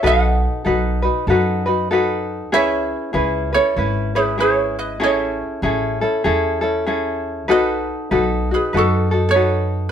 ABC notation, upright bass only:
X:1
M:4/4
L:1/8
Q:"Swing" 1/4=97
K:Bmix
V:1 name="Upright bass" clef=bass
B,,,2 B,,,2 F,,4 | C,,2 C,,2 G,,,4 | A,,,2 A,,,2 E,,4 | B,,,2 B,,,2 F,,4 |]